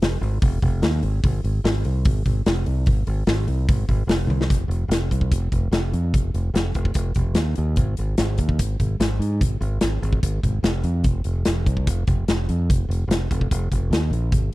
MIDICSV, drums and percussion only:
0, 0, Header, 1, 2, 480
1, 0, Start_track
1, 0, Key_signature, -4, "minor"
1, 0, Tempo, 408998
1, 1447, Time_signature, 4, 2, 24, 8
1, 17065, End_track
2, 0, Start_track
2, 0, Title_t, "Drums"
2, 26, Note_on_c, 9, 46, 78
2, 30, Note_on_c, 9, 38, 122
2, 144, Note_off_c, 9, 46, 0
2, 147, Note_off_c, 9, 38, 0
2, 269, Note_on_c, 9, 46, 54
2, 386, Note_off_c, 9, 46, 0
2, 494, Note_on_c, 9, 36, 119
2, 494, Note_on_c, 9, 46, 89
2, 611, Note_off_c, 9, 36, 0
2, 611, Note_off_c, 9, 46, 0
2, 732, Note_on_c, 9, 46, 46
2, 733, Note_on_c, 9, 36, 70
2, 850, Note_off_c, 9, 36, 0
2, 850, Note_off_c, 9, 46, 0
2, 970, Note_on_c, 9, 46, 67
2, 973, Note_on_c, 9, 38, 106
2, 1087, Note_off_c, 9, 46, 0
2, 1090, Note_off_c, 9, 38, 0
2, 1205, Note_on_c, 9, 46, 58
2, 1323, Note_off_c, 9, 46, 0
2, 1452, Note_on_c, 9, 36, 102
2, 1453, Note_on_c, 9, 46, 77
2, 1569, Note_off_c, 9, 36, 0
2, 1571, Note_off_c, 9, 46, 0
2, 1697, Note_on_c, 9, 46, 60
2, 1814, Note_off_c, 9, 46, 0
2, 1937, Note_on_c, 9, 46, 84
2, 1940, Note_on_c, 9, 38, 119
2, 2054, Note_off_c, 9, 46, 0
2, 2058, Note_off_c, 9, 38, 0
2, 2168, Note_on_c, 9, 46, 61
2, 2286, Note_off_c, 9, 46, 0
2, 2405, Note_on_c, 9, 46, 89
2, 2412, Note_on_c, 9, 36, 124
2, 2522, Note_off_c, 9, 46, 0
2, 2529, Note_off_c, 9, 36, 0
2, 2649, Note_on_c, 9, 36, 75
2, 2649, Note_on_c, 9, 46, 56
2, 2766, Note_off_c, 9, 46, 0
2, 2767, Note_off_c, 9, 36, 0
2, 2889, Note_on_c, 9, 46, 74
2, 2893, Note_on_c, 9, 38, 105
2, 3006, Note_off_c, 9, 46, 0
2, 3010, Note_off_c, 9, 38, 0
2, 3125, Note_on_c, 9, 46, 63
2, 3243, Note_off_c, 9, 46, 0
2, 3357, Note_on_c, 9, 46, 74
2, 3367, Note_on_c, 9, 36, 104
2, 3474, Note_off_c, 9, 46, 0
2, 3484, Note_off_c, 9, 36, 0
2, 3602, Note_on_c, 9, 46, 60
2, 3720, Note_off_c, 9, 46, 0
2, 3837, Note_on_c, 9, 46, 75
2, 3840, Note_on_c, 9, 38, 121
2, 3954, Note_off_c, 9, 46, 0
2, 3958, Note_off_c, 9, 38, 0
2, 4081, Note_on_c, 9, 46, 57
2, 4198, Note_off_c, 9, 46, 0
2, 4327, Note_on_c, 9, 36, 127
2, 4328, Note_on_c, 9, 46, 86
2, 4444, Note_off_c, 9, 36, 0
2, 4445, Note_off_c, 9, 46, 0
2, 4560, Note_on_c, 9, 46, 51
2, 4563, Note_on_c, 9, 36, 64
2, 4678, Note_off_c, 9, 46, 0
2, 4680, Note_off_c, 9, 36, 0
2, 4802, Note_on_c, 9, 46, 82
2, 4805, Note_on_c, 9, 38, 110
2, 4919, Note_off_c, 9, 46, 0
2, 4922, Note_off_c, 9, 38, 0
2, 5048, Note_on_c, 9, 48, 67
2, 5165, Note_off_c, 9, 48, 0
2, 5174, Note_on_c, 9, 38, 79
2, 5284, Note_on_c, 9, 36, 99
2, 5291, Note_on_c, 9, 42, 83
2, 5292, Note_off_c, 9, 38, 0
2, 5401, Note_off_c, 9, 36, 0
2, 5408, Note_off_c, 9, 42, 0
2, 5529, Note_on_c, 9, 42, 64
2, 5646, Note_off_c, 9, 42, 0
2, 5767, Note_on_c, 9, 42, 95
2, 5770, Note_on_c, 9, 38, 113
2, 5884, Note_off_c, 9, 42, 0
2, 5887, Note_off_c, 9, 38, 0
2, 6000, Note_on_c, 9, 36, 78
2, 6010, Note_on_c, 9, 42, 64
2, 6117, Note_off_c, 9, 36, 0
2, 6118, Note_on_c, 9, 36, 75
2, 6127, Note_off_c, 9, 42, 0
2, 6235, Note_off_c, 9, 36, 0
2, 6239, Note_on_c, 9, 36, 106
2, 6243, Note_on_c, 9, 42, 98
2, 6356, Note_off_c, 9, 36, 0
2, 6360, Note_off_c, 9, 42, 0
2, 6479, Note_on_c, 9, 36, 74
2, 6481, Note_on_c, 9, 42, 59
2, 6596, Note_off_c, 9, 36, 0
2, 6598, Note_off_c, 9, 42, 0
2, 6719, Note_on_c, 9, 42, 80
2, 6723, Note_on_c, 9, 38, 106
2, 6836, Note_off_c, 9, 42, 0
2, 6840, Note_off_c, 9, 38, 0
2, 6966, Note_on_c, 9, 42, 65
2, 7084, Note_off_c, 9, 42, 0
2, 7205, Note_on_c, 9, 36, 99
2, 7209, Note_on_c, 9, 42, 76
2, 7322, Note_off_c, 9, 36, 0
2, 7326, Note_off_c, 9, 42, 0
2, 7447, Note_on_c, 9, 42, 63
2, 7564, Note_off_c, 9, 42, 0
2, 7692, Note_on_c, 9, 42, 80
2, 7696, Note_on_c, 9, 38, 107
2, 7809, Note_off_c, 9, 42, 0
2, 7813, Note_off_c, 9, 38, 0
2, 7916, Note_on_c, 9, 42, 57
2, 7924, Note_on_c, 9, 36, 77
2, 8033, Note_off_c, 9, 42, 0
2, 8041, Note_off_c, 9, 36, 0
2, 8041, Note_on_c, 9, 36, 76
2, 8146, Note_on_c, 9, 42, 96
2, 8158, Note_off_c, 9, 36, 0
2, 8159, Note_on_c, 9, 36, 103
2, 8264, Note_off_c, 9, 42, 0
2, 8277, Note_off_c, 9, 36, 0
2, 8387, Note_on_c, 9, 42, 54
2, 8401, Note_on_c, 9, 36, 71
2, 8504, Note_off_c, 9, 42, 0
2, 8518, Note_off_c, 9, 36, 0
2, 8623, Note_on_c, 9, 42, 88
2, 8626, Note_on_c, 9, 38, 106
2, 8740, Note_off_c, 9, 42, 0
2, 8743, Note_off_c, 9, 38, 0
2, 8867, Note_on_c, 9, 42, 63
2, 8984, Note_off_c, 9, 42, 0
2, 9108, Note_on_c, 9, 42, 79
2, 9120, Note_on_c, 9, 36, 106
2, 9226, Note_off_c, 9, 42, 0
2, 9237, Note_off_c, 9, 36, 0
2, 9354, Note_on_c, 9, 42, 67
2, 9471, Note_off_c, 9, 42, 0
2, 9596, Note_on_c, 9, 42, 95
2, 9599, Note_on_c, 9, 38, 122
2, 9713, Note_off_c, 9, 42, 0
2, 9717, Note_off_c, 9, 38, 0
2, 9832, Note_on_c, 9, 42, 66
2, 9841, Note_on_c, 9, 36, 76
2, 9949, Note_off_c, 9, 42, 0
2, 9958, Note_off_c, 9, 36, 0
2, 9961, Note_on_c, 9, 36, 81
2, 10078, Note_off_c, 9, 36, 0
2, 10082, Note_on_c, 9, 42, 111
2, 10085, Note_on_c, 9, 36, 102
2, 10199, Note_off_c, 9, 42, 0
2, 10202, Note_off_c, 9, 36, 0
2, 10325, Note_on_c, 9, 36, 68
2, 10326, Note_on_c, 9, 42, 57
2, 10442, Note_off_c, 9, 36, 0
2, 10443, Note_off_c, 9, 42, 0
2, 10568, Note_on_c, 9, 42, 91
2, 10571, Note_on_c, 9, 38, 114
2, 10685, Note_off_c, 9, 42, 0
2, 10688, Note_off_c, 9, 38, 0
2, 10819, Note_on_c, 9, 42, 69
2, 10936, Note_off_c, 9, 42, 0
2, 11045, Note_on_c, 9, 36, 102
2, 11052, Note_on_c, 9, 42, 87
2, 11162, Note_off_c, 9, 36, 0
2, 11170, Note_off_c, 9, 42, 0
2, 11287, Note_on_c, 9, 42, 63
2, 11405, Note_off_c, 9, 42, 0
2, 11511, Note_on_c, 9, 42, 93
2, 11515, Note_on_c, 9, 38, 118
2, 11628, Note_off_c, 9, 42, 0
2, 11632, Note_off_c, 9, 38, 0
2, 11774, Note_on_c, 9, 42, 59
2, 11883, Note_on_c, 9, 36, 89
2, 11891, Note_off_c, 9, 42, 0
2, 12000, Note_off_c, 9, 36, 0
2, 12005, Note_on_c, 9, 36, 108
2, 12006, Note_on_c, 9, 42, 96
2, 12123, Note_off_c, 9, 36, 0
2, 12123, Note_off_c, 9, 42, 0
2, 12246, Note_on_c, 9, 36, 77
2, 12252, Note_on_c, 9, 42, 58
2, 12363, Note_off_c, 9, 36, 0
2, 12370, Note_off_c, 9, 42, 0
2, 12485, Note_on_c, 9, 42, 84
2, 12489, Note_on_c, 9, 38, 111
2, 12602, Note_off_c, 9, 42, 0
2, 12606, Note_off_c, 9, 38, 0
2, 12718, Note_on_c, 9, 42, 64
2, 12835, Note_off_c, 9, 42, 0
2, 12954, Note_on_c, 9, 42, 76
2, 12961, Note_on_c, 9, 36, 102
2, 13072, Note_off_c, 9, 42, 0
2, 13079, Note_off_c, 9, 36, 0
2, 13194, Note_on_c, 9, 42, 67
2, 13312, Note_off_c, 9, 42, 0
2, 13440, Note_on_c, 9, 42, 101
2, 13443, Note_on_c, 9, 38, 113
2, 13557, Note_off_c, 9, 42, 0
2, 13561, Note_off_c, 9, 38, 0
2, 13690, Note_on_c, 9, 36, 81
2, 13693, Note_on_c, 9, 42, 68
2, 13807, Note_off_c, 9, 36, 0
2, 13810, Note_off_c, 9, 42, 0
2, 13811, Note_on_c, 9, 36, 70
2, 13928, Note_off_c, 9, 36, 0
2, 13933, Note_on_c, 9, 36, 115
2, 13933, Note_on_c, 9, 42, 108
2, 14050, Note_off_c, 9, 42, 0
2, 14051, Note_off_c, 9, 36, 0
2, 14169, Note_on_c, 9, 42, 57
2, 14172, Note_on_c, 9, 36, 81
2, 14286, Note_off_c, 9, 42, 0
2, 14290, Note_off_c, 9, 36, 0
2, 14414, Note_on_c, 9, 42, 84
2, 14417, Note_on_c, 9, 38, 98
2, 14531, Note_off_c, 9, 42, 0
2, 14535, Note_off_c, 9, 38, 0
2, 14657, Note_on_c, 9, 42, 67
2, 14774, Note_off_c, 9, 42, 0
2, 14903, Note_on_c, 9, 36, 111
2, 14910, Note_on_c, 9, 42, 95
2, 15021, Note_off_c, 9, 36, 0
2, 15027, Note_off_c, 9, 42, 0
2, 15155, Note_on_c, 9, 42, 70
2, 15273, Note_off_c, 9, 42, 0
2, 15384, Note_on_c, 9, 42, 95
2, 15387, Note_on_c, 9, 38, 114
2, 15501, Note_off_c, 9, 42, 0
2, 15505, Note_off_c, 9, 38, 0
2, 15619, Note_on_c, 9, 36, 79
2, 15626, Note_on_c, 9, 42, 71
2, 15736, Note_off_c, 9, 36, 0
2, 15741, Note_on_c, 9, 36, 74
2, 15743, Note_off_c, 9, 42, 0
2, 15858, Note_off_c, 9, 36, 0
2, 15859, Note_on_c, 9, 36, 94
2, 15862, Note_on_c, 9, 42, 106
2, 15976, Note_off_c, 9, 36, 0
2, 15979, Note_off_c, 9, 42, 0
2, 16097, Note_on_c, 9, 36, 68
2, 16103, Note_on_c, 9, 42, 63
2, 16215, Note_off_c, 9, 36, 0
2, 16220, Note_off_c, 9, 42, 0
2, 16344, Note_on_c, 9, 42, 83
2, 16348, Note_on_c, 9, 38, 100
2, 16462, Note_off_c, 9, 42, 0
2, 16465, Note_off_c, 9, 38, 0
2, 16582, Note_on_c, 9, 42, 63
2, 16700, Note_off_c, 9, 42, 0
2, 16808, Note_on_c, 9, 42, 79
2, 16809, Note_on_c, 9, 36, 102
2, 16926, Note_off_c, 9, 36, 0
2, 16926, Note_off_c, 9, 42, 0
2, 17065, End_track
0, 0, End_of_file